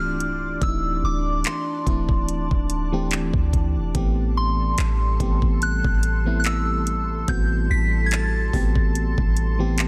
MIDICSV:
0, 0, Header, 1, 6, 480
1, 0, Start_track
1, 0, Tempo, 833333
1, 354, Time_signature, 4, 2, 24, 8
1, 5690, End_track
2, 0, Start_track
2, 0, Title_t, "Synth bell"
2, 0, Program_c, 0, 98
2, 0, Note_on_c, 0, 89, 100
2, 362, Note_on_c, 0, 88, 103
2, 373, Note_off_c, 0, 89, 0
2, 603, Note_on_c, 0, 86, 87
2, 605, Note_off_c, 0, 88, 0
2, 844, Note_on_c, 0, 84, 77
2, 846, Note_off_c, 0, 86, 0
2, 1776, Note_off_c, 0, 84, 0
2, 2519, Note_on_c, 0, 84, 86
2, 3242, Note_on_c, 0, 90, 100
2, 3258, Note_off_c, 0, 84, 0
2, 3678, Note_off_c, 0, 90, 0
2, 3685, Note_on_c, 0, 90, 72
2, 3718, Note_off_c, 0, 90, 0
2, 3722, Note_on_c, 0, 88, 94
2, 4199, Note_on_c, 0, 91, 103
2, 4212, Note_off_c, 0, 88, 0
2, 4440, Note_on_c, 0, 95, 104
2, 4444, Note_off_c, 0, 91, 0
2, 4644, Note_on_c, 0, 92, 74
2, 4646, Note_off_c, 0, 95, 0
2, 4678, Note_off_c, 0, 92, 0
2, 4682, Note_on_c, 0, 93, 96
2, 5615, Note_off_c, 0, 93, 0
2, 5690, End_track
3, 0, Start_track
3, 0, Title_t, "Ambient pad"
3, 0, Program_c, 1, 92
3, 0, Note_on_c, 1, 62, 82
3, 0, Note_on_c, 1, 74, 75
3, 0, Note_on_c, 1, 84, 73
3, 0, Note_on_c, 1, 86, 91
3, 335, Note_off_c, 1, 84, 0
3, 358, Note_on_c, 1, 81, 76
3, 2252, Note_off_c, 1, 74, 0
3, 2252, Note_off_c, 1, 86, 0
3, 2253, Note_off_c, 1, 62, 0
3, 2257, Note_off_c, 1, 81, 0
3, 2275, Note_on_c, 1, 81, 77
3, 2275, Note_on_c, 1, 84, 92
3, 2276, Note_on_c, 1, 69, 76
3, 2277, Note_on_c, 1, 55, 86
3, 4176, Note_off_c, 1, 81, 0
3, 4195, Note_on_c, 1, 81, 73
3, 5690, Note_off_c, 1, 55, 0
3, 5690, Note_off_c, 1, 69, 0
3, 5690, Note_off_c, 1, 81, 0
3, 5690, Note_off_c, 1, 84, 0
3, 5690, End_track
4, 0, Start_track
4, 0, Title_t, "FM electric piano"
4, 0, Program_c, 2, 5
4, 0, Control_c, 2, 64, 127
4, 0, Note_on_c, 2, 52, 74
4, 0, Note_on_c, 2, 57, 69
4, 0, Note_on_c, 2, 60, 68
4, 0, Note_on_c, 2, 62, 69
4, 0, Note_on_c, 2, 64, 75
4, 0, Note_on_c, 2, 65, 86
4, 0, Note_on_c, 2, 67, 81
4, 144, Note_off_c, 2, 52, 0
4, 145, Note_off_c, 2, 57, 0
4, 147, Note_off_c, 2, 60, 0
4, 147, Note_off_c, 2, 62, 0
4, 148, Note_off_c, 2, 67, 0
4, 352, Note_on_c, 2, 52, 75
4, 355, Note_on_c, 2, 57, 66
4, 358, Note_on_c, 2, 60, 70
4, 360, Note_on_c, 2, 62, 67
4, 362, Note_on_c, 2, 63, 66
4, 399, Note_off_c, 2, 63, 0
4, 400, Note_off_c, 2, 64, 0
4, 400, Note_on_c, 2, 64, 80
4, 821, Note_off_c, 2, 52, 0
4, 823, Note_off_c, 2, 57, 0
4, 824, Note_off_c, 2, 60, 0
4, 825, Note_off_c, 2, 62, 0
4, 845, Note_off_c, 2, 64, 0
4, 1073, Note_on_c, 2, 52, 76
4, 1075, Note_on_c, 2, 57, 68
4, 1077, Note_on_c, 2, 60, 72
4, 1079, Note_on_c, 2, 62, 71
4, 1082, Note_on_c, 2, 64, 88
4, 1470, Note_off_c, 2, 52, 0
4, 1471, Note_off_c, 2, 57, 0
4, 1472, Note_off_c, 2, 60, 0
4, 1473, Note_off_c, 2, 62, 0
4, 1474, Note_off_c, 2, 64, 0
4, 1682, Note_on_c, 2, 52, 96
4, 1686, Note_on_c, 2, 57, 83
4, 1687, Note_on_c, 2, 60, 90
4, 1689, Note_on_c, 2, 62, 84
4, 1692, Note_on_c, 2, 67, 105
4, 2065, Note_off_c, 2, 52, 0
4, 2067, Note_off_c, 2, 57, 0
4, 2067, Note_off_c, 2, 60, 0
4, 2068, Note_off_c, 2, 62, 0
4, 2069, Note_off_c, 2, 67, 0
4, 2272, Note_on_c, 2, 52, 94
4, 2275, Note_on_c, 2, 57, 86
4, 2277, Note_on_c, 2, 59, 80
4, 2280, Note_on_c, 2, 60, 82
4, 2281, Control_c, 2, 64, 0
4, 2282, Note_on_c, 2, 67, 101
4, 2286, Note_off_c, 2, 65, 0
4, 2398, Control_c, 2, 64, 127
4, 2741, Note_off_c, 2, 52, 0
4, 2742, Note_off_c, 2, 57, 0
4, 2743, Note_off_c, 2, 59, 0
4, 2745, Note_off_c, 2, 60, 0
4, 2746, Note_off_c, 2, 67, 0
4, 2994, Note_on_c, 2, 52, 78
4, 2995, Note_on_c, 2, 57, 75
4, 2998, Note_on_c, 2, 59, 73
4, 3001, Note_on_c, 2, 60, 73
4, 3003, Note_on_c, 2, 67, 91
4, 3390, Note_off_c, 2, 52, 0
4, 3391, Note_off_c, 2, 57, 0
4, 3392, Note_off_c, 2, 59, 0
4, 3394, Note_off_c, 2, 60, 0
4, 3395, Note_off_c, 2, 67, 0
4, 3602, Note_on_c, 2, 52, 78
4, 3605, Note_on_c, 2, 57, 74
4, 3607, Note_on_c, 2, 59, 70
4, 3609, Note_on_c, 2, 60, 71
4, 3612, Note_on_c, 2, 64, 88
4, 3985, Note_off_c, 2, 52, 0
4, 3986, Note_off_c, 2, 57, 0
4, 3987, Note_off_c, 2, 59, 0
4, 3988, Note_off_c, 2, 60, 0
4, 3989, Note_off_c, 2, 64, 0
4, 4194, Note_on_c, 2, 52, 79
4, 4196, Note_on_c, 2, 57, 67
4, 4199, Note_on_c, 2, 59, 69
4, 4200, Note_on_c, 2, 60, 73
4, 4202, Note_on_c, 2, 66, 84
4, 4662, Note_off_c, 2, 52, 0
4, 4663, Note_off_c, 2, 57, 0
4, 4664, Note_off_c, 2, 59, 0
4, 4665, Note_off_c, 2, 60, 0
4, 4666, Note_off_c, 2, 66, 0
4, 4913, Note_on_c, 2, 52, 76
4, 4916, Note_on_c, 2, 57, 68
4, 4917, Note_on_c, 2, 59, 72
4, 4919, Note_on_c, 2, 60, 72
4, 4922, Note_on_c, 2, 67, 86
4, 5310, Note_off_c, 2, 52, 0
4, 5311, Note_off_c, 2, 57, 0
4, 5312, Note_off_c, 2, 59, 0
4, 5313, Note_off_c, 2, 60, 0
4, 5314, Note_off_c, 2, 67, 0
4, 5521, Note_on_c, 2, 52, 94
4, 5524, Note_on_c, 2, 57, 79
4, 5526, Note_on_c, 2, 59, 82
4, 5529, Note_on_c, 2, 60, 83
4, 5531, Note_on_c, 2, 67, 102
4, 5690, Note_off_c, 2, 52, 0
4, 5690, Note_off_c, 2, 57, 0
4, 5690, Note_off_c, 2, 59, 0
4, 5690, Note_off_c, 2, 60, 0
4, 5690, Note_off_c, 2, 67, 0
4, 5690, End_track
5, 0, Start_track
5, 0, Title_t, "808-style bass"
5, 0, Program_c, 3, 38
5, 0, Note_on_c, 3, 24, 96
5, 334, Note_off_c, 3, 24, 0
5, 355, Note_on_c, 3, 26, 112
5, 585, Note_off_c, 3, 26, 0
5, 595, Note_on_c, 3, 26, 109
5, 825, Note_off_c, 3, 26, 0
5, 1076, Note_on_c, 3, 26, 107
5, 1430, Note_off_c, 3, 26, 0
5, 1448, Note_on_c, 3, 26, 103
5, 1907, Note_off_c, 3, 26, 0
5, 1922, Note_on_c, 3, 38, 103
5, 2166, Note_on_c, 3, 28, 101
5, 2175, Note_off_c, 3, 38, 0
5, 2270, Note_off_c, 3, 28, 0
5, 2276, Note_on_c, 3, 33, 107
5, 2736, Note_off_c, 3, 33, 0
5, 2755, Note_on_c, 3, 33, 113
5, 2985, Note_off_c, 3, 33, 0
5, 2997, Note_on_c, 3, 33, 105
5, 3350, Note_off_c, 3, 33, 0
5, 3368, Note_on_c, 3, 33, 104
5, 4173, Note_off_c, 3, 33, 0
5, 4196, Note_on_c, 3, 33, 110
5, 4426, Note_off_c, 3, 33, 0
5, 4436, Note_on_c, 3, 33, 101
5, 4896, Note_off_c, 3, 33, 0
5, 4917, Note_on_c, 3, 33, 105
5, 5271, Note_off_c, 3, 33, 0
5, 5288, Note_on_c, 3, 33, 96
5, 5690, Note_off_c, 3, 33, 0
5, 5690, End_track
6, 0, Start_track
6, 0, Title_t, "Drums"
6, 118, Note_on_c, 9, 42, 62
6, 175, Note_off_c, 9, 42, 0
6, 355, Note_on_c, 9, 36, 109
6, 355, Note_on_c, 9, 42, 66
6, 412, Note_off_c, 9, 36, 0
6, 413, Note_off_c, 9, 42, 0
6, 831, Note_on_c, 9, 42, 77
6, 840, Note_on_c, 9, 39, 102
6, 889, Note_off_c, 9, 42, 0
6, 898, Note_off_c, 9, 39, 0
6, 1075, Note_on_c, 9, 36, 93
6, 1077, Note_on_c, 9, 42, 69
6, 1132, Note_off_c, 9, 36, 0
6, 1134, Note_off_c, 9, 42, 0
6, 1202, Note_on_c, 9, 36, 96
6, 1260, Note_off_c, 9, 36, 0
6, 1316, Note_on_c, 9, 42, 64
6, 1374, Note_off_c, 9, 42, 0
6, 1447, Note_on_c, 9, 36, 90
6, 1504, Note_off_c, 9, 36, 0
6, 1553, Note_on_c, 9, 42, 75
6, 1611, Note_off_c, 9, 42, 0
6, 1790, Note_on_c, 9, 42, 77
6, 1799, Note_on_c, 9, 39, 119
6, 1848, Note_off_c, 9, 42, 0
6, 1857, Note_off_c, 9, 39, 0
6, 1921, Note_on_c, 9, 36, 98
6, 1979, Note_off_c, 9, 36, 0
6, 2035, Note_on_c, 9, 36, 87
6, 2036, Note_on_c, 9, 42, 60
6, 2093, Note_off_c, 9, 36, 0
6, 2094, Note_off_c, 9, 42, 0
6, 2274, Note_on_c, 9, 36, 105
6, 2274, Note_on_c, 9, 42, 68
6, 2332, Note_off_c, 9, 36, 0
6, 2332, Note_off_c, 9, 42, 0
6, 2752, Note_on_c, 9, 42, 78
6, 2761, Note_on_c, 9, 39, 103
6, 2810, Note_off_c, 9, 42, 0
6, 2819, Note_off_c, 9, 39, 0
6, 2996, Note_on_c, 9, 36, 100
6, 2997, Note_on_c, 9, 42, 69
6, 3053, Note_off_c, 9, 36, 0
6, 3055, Note_off_c, 9, 42, 0
6, 3123, Note_on_c, 9, 36, 94
6, 3180, Note_off_c, 9, 36, 0
6, 3236, Note_on_c, 9, 42, 69
6, 3294, Note_off_c, 9, 42, 0
6, 3367, Note_on_c, 9, 36, 97
6, 3424, Note_off_c, 9, 36, 0
6, 3474, Note_on_c, 9, 42, 71
6, 3531, Note_off_c, 9, 42, 0
6, 3709, Note_on_c, 9, 42, 76
6, 3718, Note_on_c, 9, 39, 121
6, 3767, Note_off_c, 9, 42, 0
6, 3776, Note_off_c, 9, 39, 0
6, 3956, Note_on_c, 9, 42, 60
6, 4014, Note_off_c, 9, 42, 0
6, 4194, Note_on_c, 9, 36, 110
6, 4194, Note_on_c, 9, 42, 65
6, 4251, Note_off_c, 9, 42, 0
6, 4252, Note_off_c, 9, 36, 0
6, 4672, Note_on_c, 9, 42, 77
6, 4681, Note_on_c, 9, 39, 110
6, 4730, Note_off_c, 9, 42, 0
6, 4739, Note_off_c, 9, 39, 0
6, 4916, Note_on_c, 9, 36, 89
6, 4918, Note_on_c, 9, 46, 50
6, 4974, Note_off_c, 9, 36, 0
6, 4975, Note_off_c, 9, 46, 0
6, 5043, Note_on_c, 9, 36, 93
6, 5100, Note_off_c, 9, 36, 0
6, 5158, Note_on_c, 9, 42, 64
6, 5215, Note_off_c, 9, 42, 0
6, 5287, Note_on_c, 9, 36, 93
6, 5345, Note_off_c, 9, 36, 0
6, 5395, Note_on_c, 9, 42, 70
6, 5452, Note_off_c, 9, 42, 0
6, 5631, Note_on_c, 9, 42, 74
6, 5640, Note_on_c, 9, 39, 120
6, 5689, Note_off_c, 9, 42, 0
6, 5690, Note_off_c, 9, 39, 0
6, 5690, End_track
0, 0, End_of_file